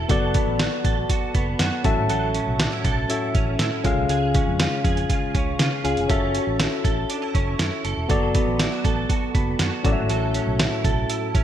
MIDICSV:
0, 0, Header, 1, 5, 480
1, 0, Start_track
1, 0, Key_signature, 3, "major"
1, 0, Tempo, 500000
1, 92, Time_signature, 4, 2, 24, 8
1, 10978, End_track
2, 0, Start_track
2, 0, Title_t, "Tine electric piano"
2, 0, Program_c, 0, 4
2, 0, Control_c, 0, 64, 127
2, 0, Note_on_c, 0, 61, 71
2, 0, Note_on_c, 0, 66, 64
2, 0, Note_on_c, 0, 69, 66
2, 0, Note_on_c, 0, 76, 74
2, 81, Note_on_c, 0, 59, 68
2, 89, Note_off_c, 0, 66, 0
2, 89, Note_on_c, 0, 66, 65
2, 97, Note_off_c, 0, 69, 0
2, 97, Note_on_c, 0, 69, 67
2, 105, Note_on_c, 0, 74, 77
2, 106, Control_c, 0, 64, 0
2, 107, Note_off_c, 0, 76, 0
2, 114, Note_off_c, 0, 61, 0
2, 258, Control_c, 0, 64, 127
2, 1532, Note_on_c, 0, 78, 66
2, 1733, Note_off_c, 0, 59, 0
2, 1737, Note_off_c, 0, 66, 0
2, 1741, Note_off_c, 0, 69, 0
2, 1745, Note_off_c, 0, 74, 0
2, 1755, Note_off_c, 0, 78, 0
2, 1762, Note_on_c, 0, 61, 68
2, 1771, Note_on_c, 0, 66, 63
2, 1774, Note_on_c, 0, 45, 66
2, 1774, Note_on_c, 0, 81, 69
2, 1778, Note_on_c, 0, 69, 65
2, 1783, Control_c, 0, 64, 0
2, 1786, Note_on_c, 0, 76, 78
2, 1939, Control_c, 0, 64, 127
2, 1996, Note_off_c, 0, 81, 0
2, 2454, Note_off_c, 0, 45, 0
2, 2943, Note_off_c, 0, 61, 0
2, 2948, Note_off_c, 0, 66, 0
2, 2951, Note_off_c, 0, 69, 0
2, 2955, Note_off_c, 0, 76, 0
2, 2968, Note_on_c, 0, 61, 52
2, 2972, Note_on_c, 0, 66, 49
2, 2975, Note_on_c, 0, 69, 48
2, 2979, Note_on_c, 0, 76, 61
2, 3672, Note_off_c, 0, 61, 0
2, 3683, Note_on_c, 0, 61, 70
2, 3692, Note_off_c, 0, 66, 0
2, 3692, Note_on_c, 0, 65, 65
2, 3694, Note_off_c, 0, 69, 0
2, 3695, Note_on_c, 0, 49, 67
2, 3696, Note_off_c, 0, 76, 0
2, 3699, Note_on_c, 0, 68, 62
2, 3705, Control_c, 0, 64, 0
2, 3707, Note_on_c, 0, 77, 78
2, 3898, Control_c, 0, 64, 127
2, 4375, Note_off_c, 0, 49, 0
2, 5569, Note_off_c, 0, 61, 0
2, 5574, Note_off_c, 0, 65, 0
2, 5577, Note_off_c, 0, 68, 0
2, 5581, Note_off_c, 0, 77, 0
2, 5607, Note_on_c, 0, 61, 55
2, 5610, Note_on_c, 0, 65, 48
2, 5613, Note_on_c, 0, 68, 45
2, 5617, Note_on_c, 0, 77, 56
2, 5826, Note_off_c, 0, 61, 0
2, 5838, Note_on_c, 0, 61, 68
2, 5846, Note_on_c, 0, 66, 62
2, 5851, Note_off_c, 0, 65, 0
2, 5852, Note_off_c, 0, 68, 0
2, 5853, Note_on_c, 0, 69, 63
2, 5855, Note_off_c, 0, 77, 0
2, 5861, Note_on_c, 0, 76, 77
2, 5864, Control_c, 0, 64, 0
2, 6043, Control_c, 0, 64, 127
2, 7727, Note_off_c, 0, 61, 0
2, 7730, Note_off_c, 0, 66, 0
2, 7734, Note_off_c, 0, 69, 0
2, 7738, Note_off_c, 0, 76, 0
2, 7760, Note_on_c, 0, 59, 70
2, 7767, Note_on_c, 0, 66, 65
2, 7775, Note_on_c, 0, 69, 62
2, 7783, Control_c, 0, 64, 0
2, 7783, Note_on_c, 0, 74, 82
2, 7975, Control_c, 0, 64, 127
2, 9412, Note_off_c, 0, 59, 0
2, 9416, Note_off_c, 0, 66, 0
2, 9420, Note_off_c, 0, 69, 0
2, 9424, Note_off_c, 0, 74, 0
2, 9442, Note_on_c, 0, 61, 69
2, 9449, Note_on_c, 0, 66, 64
2, 9454, Note_on_c, 0, 45, 73
2, 9457, Note_on_c, 0, 69, 68
2, 9464, Note_on_c, 0, 74, 63
2, 9466, Control_c, 0, 64, 0
2, 9516, Note_off_c, 0, 74, 0
2, 9523, Note_on_c, 0, 76, 74
2, 9605, Control_c, 0, 64, 127
2, 10135, Note_off_c, 0, 45, 0
2, 10978, Note_off_c, 0, 61, 0
2, 10978, Note_off_c, 0, 66, 0
2, 10978, Note_off_c, 0, 69, 0
2, 10978, Note_off_c, 0, 76, 0
2, 10978, End_track
3, 0, Start_track
3, 0, Title_t, "Clean electric guitar"
3, 0, Program_c, 1, 27
3, 0, Note_on_c, 1, 61, 58
3, 0, Note_on_c, 1, 64, 60
3, 94, Note_on_c, 1, 54, 73
3, 99, Note_on_c, 1, 69, 62
3, 140, Note_off_c, 1, 61, 0
3, 140, Note_off_c, 1, 64, 0
3, 334, Note_on_c, 1, 59, 54
3, 573, Note_on_c, 1, 66, 58
3, 809, Note_off_c, 1, 69, 0
3, 813, Note_on_c, 1, 69, 67
3, 1051, Note_off_c, 1, 66, 0
3, 1054, Note_on_c, 1, 66, 58
3, 1281, Note_off_c, 1, 59, 0
3, 1292, Note_on_c, 1, 59, 61
3, 1529, Note_off_c, 1, 66, 0
3, 1533, Note_on_c, 1, 66, 61
3, 1769, Note_off_c, 1, 54, 0
3, 1773, Note_on_c, 1, 54, 67
3, 1820, Note_off_c, 1, 59, 0
3, 1821, Note_off_c, 1, 66, 0
3, 1821, Note_off_c, 1, 69, 0
3, 2001, Note_off_c, 1, 54, 0
3, 2012, Note_on_c, 1, 54, 77
3, 2018, Note_on_c, 1, 69, 63
3, 2252, Note_on_c, 1, 61, 52
3, 2491, Note_on_c, 1, 62, 57
3, 2612, Note_off_c, 1, 62, 0
3, 2612, Note_on_c, 1, 64, 55
3, 2721, Note_off_c, 1, 69, 0
3, 2733, Note_on_c, 1, 69, 65
3, 2961, Note_off_c, 1, 64, 0
3, 2972, Note_on_c, 1, 64, 57
3, 3210, Note_off_c, 1, 61, 0
3, 3213, Note_on_c, 1, 61, 60
3, 3440, Note_off_c, 1, 64, 0
3, 3452, Note_on_c, 1, 64, 60
3, 3688, Note_off_c, 1, 54, 0
3, 3692, Note_on_c, 1, 56, 73
3, 3740, Note_off_c, 1, 64, 0
3, 3740, Note_off_c, 1, 69, 0
3, 3920, Note_off_c, 1, 56, 0
3, 3932, Note_on_c, 1, 56, 78
3, 3937, Note_on_c, 1, 68, 64
3, 4167, Note_off_c, 1, 61, 0
3, 4171, Note_on_c, 1, 61, 56
3, 4413, Note_on_c, 1, 65, 57
3, 4641, Note_off_c, 1, 68, 0
3, 4653, Note_on_c, 1, 68, 62
3, 4880, Note_off_c, 1, 65, 0
3, 4891, Note_on_c, 1, 65, 56
3, 5129, Note_off_c, 1, 61, 0
3, 5133, Note_on_c, 1, 61, 57
3, 5361, Note_off_c, 1, 65, 0
3, 5373, Note_on_c, 1, 65, 59
3, 5598, Note_off_c, 1, 68, 0
3, 5609, Note_on_c, 1, 68, 57
3, 5847, Note_off_c, 1, 61, 0
3, 5851, Note_off_c, 1, 68, 0
3, 5851, Note_on_c, 1, 61, 78
3, 5852, Note_off_c, 1, 56, 0
3, 5857, Note_on_c, 1, 69, 62
3, 5900, Note_off_c, 1, 65, 0
3, 6078, Note_off_c, 1, 61, 0
3, 6090, Note_on_c, 1, 61, 54
3, 6329, Note_on_c, 1, 64, 54
3, 6566, Note_off_c, 1, 69, 0
3, 6570, Note_on_c, 1, 69, 63
3, 6809, Note_off_c, 1, 64, 0
3, 6813, Note_on_c, 1, 62, 57
3, 6932, Note_off_c, 1, 62, 0
3, 6932, Note_on_c, 1, 64, 47
3, 7039, Note_off_c, 1, 61, 0
3, 7050, Note_on_c, 1, 61, 58
3, 7280, Note_off_c, 1, 64, 0
3, 7291, Note_on_c, 1, 64, 60
3, 7529, Note_off_c, 1, 69, 0
3, 7532, Note_on_c, 1, 69, 57
3, 7770, Note_on_c, 1, 54, 77
3, 7772, Note_off_c, 1, 69, 0
3, 7776, Note_on_c, 1, 69, 65
3, 7819, Note_off_c, 1, 61, 0
3, 7820, Note_off_c, 1, 64, 0
3, 8010, Note_on_c, 1, 59, 54
3, 8252, Note_on_c, 1, 64, 55
3, 8371, Note_off_c, 1, 64, 0
3, 8371, Note_on_c, 1, 66, 56
3, 8485, Note_off_c, 1, 69, 0
3, 8489, Note_on_c, 1, 69, 66
3, 8717, Note_off_c, 1, 66, 0
3, 8729, Note_on_c, 1, 66, 58
3, 8960, Note_off_c, 1, 59, 0
3, 8971, Note_on_c, 1, 59, 59
3, 9207, Note_off_c, 1, 66, 0
3, 9210, Note_on_c, 1, 66, 60
3, 9447, Note_off_c, 1, 54, 0
3, 9451, Note_on_c, 1, 54, 67
3, 9499, Note_off_c, 1, 66, 0
3, 9499, Note_off_c, 1, 69, 0
3, 9500, Note_off_c, 1, 59, 0
3, 9680, Note_off_c, 1, 54, 0
3, 9692, Note_on_c, 1, 54, 78
3, 9698, Note_on_c, 1, 69, 64
3, 9932, Note_on_c, 1, 61, 54
3, 10171, Note_on_c, 1, 64, 57
3, 10398, Note_off_c, 1, 69, 0
3, 10410, Note_on_c, 1, 69, 64
3, 10641, Note_off_c, 1, 64, 0
3, 10652, Note_on_c, 1, 64, 54
3, 10880, Note_off_c, 1, 61, 0
3, 10892, Note_on_c, 1, 61, 57
3, 10978, Note_off_c, 1, 54, 0
3, 10978, Note_off_c, 1, 61, 0
3, 10978, Note_off_c, 1, 64, 0
3, 10978, Note_off_c, 1, 69, 0
3, 10978, End_track
4, 0, Start_track
4, 0, Title_t, "Fingered electric bass"
4, 0, Program_c, 2, 33
4, 92, Note_on_c, 2, 30, 97
4, 362, Note_off_c, 2, 30, 0
4, 452, Note_on_c, 2, 33, 84
4, 632, Note_off_c, 2, 33, 0
4, 812, Note_on_c, 2, 33, 79
4, 992, Note_off_c, 2, 33, 0
4, 1293, Note_on_c, 2, 30, 86
4, 1473, Note_off_c, 2, 30, 0
4, 1530, Note_on_c, 2, 42, 92
4, 1621, Note_off_c, 2, 42, 0
4, 1771, Note_on_c, 2, 33, 89
4, 1862, Note_off_c, 2, 33, 0
4, 1892, Note_on_c, 2, 32, 83
4, 1982, Note_off_c, 2, 32, 0
4, 2013, Note_on_c, 2, 33, 87
4, 2282, Note_off_c, 2, 33, 0
4, 2373, Note_on_c, 2, 35, 78
4, 2552, Note_off_c, 2, 35, 0
4, 2732, Note_on_c, 2, 35, 79
4, 2912, Note_off_c, 2, 35, 0
4, 3214, Note_on_c, 2, 33, 82
4, 3393, Note_off_c, 2, 33, 0
4, 3453, Note_on_c, 2, 45, 91
4, 3542, Note_off_c, 2, 45, 0
4, 3692, Note_on_c, 2, 37, 88
4, 3782, Note_off_c, 2, 37, 0
4, 3812, Note_on_c, 2, 35, 81
4, 3902, Note_off_c, 2, 35, 0
4, 3932, Note_on_c, 2, 37, 95
4, 4202, Note_off_c, 2, 37, 0
4, 4291, Note_on_c, 2, 41, 82
4, 4472, Note_off_c, 2, 41, 0
4, 4651, Note_on_c, 2, 41, 74
4, 4832, Note_off_c, 2, 41, 0
4, 5132, Note_on_c, 2, 37, 83
4, 5312, Note_off_c, 2, 37, 0
4, 5371, Note_on_c, 2, 49, 94
4, 5461, Note_off_c, 2, 49, 0
4, 5611, Note_on_c, 2, 37, 81
4, 5702, Note_off_c, 2, 37, 0
4, 5732, Note_on_c, 2, 29, 84
4, 5822, Note_off_c, 2, 29, 0
4, 5852, Note_on_c, 2, 30, 89
4, 6122, Note_off_c, 2, 30, 0
4, 6212, Note_on_c, 2, 33, 84
4, 6392, Note_off_c, 2, 33, 0
4, 6572, Note_on_c, 2, 33, 79
4, 6752, Note_off_c, 2, 33, 0
4, 7054, Note_on_c, 2, 30, 77
4, 7233, Note_off_c, 2, 30, 0
4, 7292, Note_on_c, 2, 42, 90
4, 7382, Note_off_c, 2, 42, 0
4, 7533, Note_on_c, 2, 30, 86
4, 7623, Note_off_c, 2, 30, 0
4, 7652, Note_on_c, 2, 28, 78
4, 7742, Note_off_c, 2, 28, 0
4, 7773, Note_on_c, 2, 30, 94
4, 8043, Note_off_c, 2, 30, 0
4, 8132, Note_on_c, 2, 33, 81
4, 8312, Note_off_c, 2, 33, 0
4, 8492, Note_on_c, 2, 33, 78
4, 8672, Note_off_c, 2, 33, 0
4, 8973, Note_on_c, 2, 30, 88
4, 9153, Note_off_c, 2, 30, 0
4, 9211, Note_on_c, 2, 42, 89
4, 9301, Note_off_c, 2, 42, 0
4, 9452, Note_on_c, 2, 33, 95
4, 9542, Note_off_c, 2, 33, 0
4, 9571, Note_on_c, 2, 32, 78
4, 9661, Note_off_c, 2, 32, 0
4, 9692, Note_on_c, 2, 33, 88
4, 9962, Note_off_c, 2, 33, 0
4, 10051, Note_on_c, 2, 35, 76
4, 10231, Note_off_c, 2, 35, 0
4, 10411, Note_on_c, 2, 35, 79
4, 10591, Note_off_c, 2, 35, 0
4, 10893, Note_on_c, 2, 33, 79
4, 10978, Note_off_c, 2, 33, 0
4, 10978, End_track
5, 0, Start_track
5, 0, Title_t, "Drums"
5, 90, Note_on_c, 9, 42, 80
5, 92, Note_on_c, 9, 36, 100
5, 186, Note_off_c, 9, 42, 0
5, 188, Note_off_c, 9, 36, 0
5, 330, Note_on_c, 9, 42, 81
5, 333, Note_on_c, 9, 36, 93
5, 426, Note_off_c, 9, 42, 0
5, 429, Note_off_c, 9, 36, 0
5, 571, Note_on_c, 9, 38, 105
5, 573, Note_on_c, 9, 42, 83
5, 667, Note_off_c, 9, 38, 0
5, 669, Note_off_c, 9, 42, 0
5, 811, Note_on_c, 9, 36, 85
5, 813, Note_on_c, 9, 42, 69
5, 907, Note_off_c, 9, 36, 0
5, 909, Note_off_c, 9, 42, 0
5, 1051, Note_on_c, 9, 36, 81
5, 1052, Note_on_c, 9, 42, 85
5, 1147, Note_off_c, 9, 36, 0
5, 1148, Note_off_c, 9, 42, 0
5, 1292, Note_on_c, 9, 42, 62
5, 1293, Note_on_c, 9, 36, 77
5, 1388, Note_off_c, 9, 42, 0
5, 1389, Note_off_c, 9, 36, 0
5, 1529, Note_on_c, 9, 38, 95
5, 1531, Note_on_c, 9, 42, 86
5, 1625, Note_off_c, 9, 38, 0
5, 1627, Note_off_c, 9, 42, 0
5, 1770, Note_on_c, 9, 42, 67
5, 1772, Note_on_c, 9, 36, 94
5, 1866, Note_off_c, 9, 42, 0
5, 1868, Note_off_c, 9, 36, 0
5, 2011, Note_on_c, 9, 42, 77
5, 2107, Note_off_c, 9, 42, 0
5, 2251, Note_on_c, 9, 42, 75
5, 2347, Note_off_c, 9, 42, 0
5, 2492, Note_on_c, 9, 38, 107
5, 2493, Note_on_c, 9, 42, 82
5, 2588, Note_off_c, 9, 38, 0
5, 2589, Note_off_c, 9, 42, 0
5, 2731, Note_on_c, 9, 36, 79
5, 2733, Note_on_c, 9, 42, 68
5, 2827, Note_off_c, 9, 36, 0
5, 2829, Note_off_c, 9, 42, 0
5, 2973, Note_on_c, 9, 42, 89
5, 3069, Note_off_c, 9, 42, 0
5, 3213, Note_on_c, 9, 36, 82
5, 3213, Note_on_c, 9, 42, 60
5, 3309, Note_off_c, 9, 36, 0
5, 3309, Note_off_c, 9, 42, 0
5, 3448, Note_on_c, 9, 38, 91
5, 3450, Note_on_c, 9, 42, 85
5, 3544, Note_off_c, 9, 38, 0
5, 3546, Note_off_c, 9, 42, 0
5, 3691, Note_on_c, 9, 42, 66
5, 3692, Note_on_c, 9, 36, 93
5, 3787, Note_off_c, 9, 42, 0
5, 3788, Note_off_c, 9, 36, 0
5, 3930, Note_on_c, 9, 42, 82
5, 4026, Note_off_c, 9, 42, 0
5, 4171, Note_on_c, 9, 42, 74
5, 4173, Note_on_c, 9, 36, 97
5, 4267, Note_off_c, 9, 42, 0
5, 4269, Note_off_c, 9, 36, 0
5, 4412, Note_on_c, 9, 38, 104
5, 4414, Note_on_c, 9, 42, 85
5, 4508, Note_off_c, 9, 38, 0
5, 4510, Note_off_c, 9, 42, 0
5, 4651, Note_on_c, 9, 36, 84
5, 4654, Note_on_c, 9, 42, 64
5, 4747, Note_off_c, 9, 36, 0
5, 4750, Note_off_c, 9, 42, 0
5, 4773, Note_on_c, 9, 42, 42
5, 4869, Note_off_c, 9, 42, 0
5, 4892, Note_on_c, 9, 36, 77
5, 4893, Note_on_c, 9, 42, 83
5, 4988, Note_off_c, 9, 36, 0
5, 4989, Note_off_c, 9, 42, 0
5, 5133, Note_on_c, 9, 36, 82
5, 5133, Note_on_c, 9, 42, 61
5, 5229, Note_off_c, 9, 36, 0
5, 5229, Note_off_c, 9, 42, 0
5, 5370, Note_on_c, 9, 38, 91
5, 5372, Note_on_c, 9, 42, 87
5, 5466, Note_off_c, 9, 38, 0
5, 5468, Note_off_c, 9, 42, 0
5, 5613, Note_on_c, 9, 42, 71
5, 5709, Note_off_c, 9, 42, 0
5, 5732, Note_on_c, 9, 42, 49
5, 5828, Note_off_c, 9, 42, 0
5, 5851, Note_on_c, 9, 42, 78
5, 5852, Note_on_c, 9, 36, 104
5, 5947, Note_off_c, 9, 42, 0
5, 5948, Note_off_c, 9, 36, 0
5, 6092, Note_on_c, 9, 42, 79
5, 6188, Note_off_c, 9, 42, 0
5, 6332, Note_on_c, 9, 38, 113
5, 6334, Note_on_c, 9, 42, 88
5, 6428, Note_off_c, 9, 38, 0
5, 6430, Note_off_c, 9, 42, 0
5, 6572, Note_on_c, 9, 36, 80
5, 6574, Note_on_c, 9, 42, 68
5, 6668, Note_off_c, 9, 36, 0
5, 6670, Note_off_c, 9, 42, 0
5, 6812, Note_on_c, 9, 42, 85
5, 6908, Note_off_c, 9, 42, 0
5, 7053, Note_on_c, 9, 36, 79
5, 7055, Note_on_c, 9, 42, 62
5, 7149, Note_off_c, 9, 36, 0
5, 7151, Note_off_c, 9, 42, 0
5, 7289, Note_on_c, 9, 38, 98
5, 7291, Note_on_c, 9, 42, 86
5, 7385, Note_off_c, 9, 38, 0
5, 7387, Note_off_c, 9, 42, 0
5, 7532, Note_on_c, 9, 42, 69
5, 7628, Note_off_c, 9, 42, 0
5, 7772, Note_on_c, 9, 42, 77
5, 7773, Note_on_c, 9, 36, 109
5, 7868, Note_off_c, 9, 42, 0
5, 7869, Note_off_c, 9, 36, 0
5, 8012, Note_on_c, 9, 42, 80
5, 8014, Note_on_c, 9, 36, 97
5, 8108, Note_off_c, 9, 42, 0
5, 8110, Note_off_c, 9, 36, 0
5, 8251, Note_on_c, 9, 38, 106
5, 8253, Note_on_c, 9, 42, 90
5, 8347, Note_off_c, 9, 38, 0
5, 8349, Note_off_c, 9, 42, 0
5, 8492, Note_on_c, 9, 36, 80
5, 8494, Note_on_c, 9, 42, 70
5, 8588, Note_off_c, 9, 36, 0
5, 8590, Note_off_c, 9, 42, 0
5, 8731, Note_on_c, 9, 36, 84
5, 8733, Note_on_c, 9, 42, 80
5, 8827, Note_off_c, 9, 36, 0
5, 8829, Note_off_c, 9, 42, 0
5, 8973, Note_on_c, 9, 36, 83
5, 8974, Note_on_c, 9, 42, 58
5, 9069, Note_off_c, 9, 36, 0
5, 9070, Note_off_c, 9, 42, 0
5, 9209, Note_on_c, 9, 38, 92
5, 9211, Note_on_c, 9, 42, 86
5, 9305, Note_off_c, 9, 38, 0
5, 9307, Note_off_c, 9, 42, 0
5, 9452, Note_on_c, 9, 36, 95
5, 9453, Note_on_c, 9, 42, 69
5, 9548, Note_off_c, 9, 36, 0
5, 9549, Note_off_c, 9, 42, 0
5, 9691, Note_on_c, 9, 42, 82
5, 9787, Note_off_c, 9, 42, 0
5, 9931, Note_on_c, 9, 42, 78
5, 10027, Note_off_c, 9, 42, 0
5, 10171, Note_on_c, 9, 38, 104
5, 10173, Note_on_c, 9, 42, 83
5, 10267, Note_off_c, 9, 38, 0
5, 10269, Note_off_c, 9, 42, 0
5, 10411, Note_on_c, 9, 36, 84
5, 10413, Note_on_c, 9, 42, 67
5, 10507, Note_off_c, 9, 36, 0
5, 10509, Note_off_c, 9, 42, 0
5, 10652, Note_on_c, 9, 42, 88
5, 10748, Note_off_c, 9, 42, 0
5, 10893, Note_on_c, 9, 36, 80
5, 10894, Note_on_c, 9, 42, 61
5, 10978, Note_off_c, 9, 36, 0
5, 10978, Note_off_c, 9, 42, 0
5, 10978, End_track
0, 0, End_of_file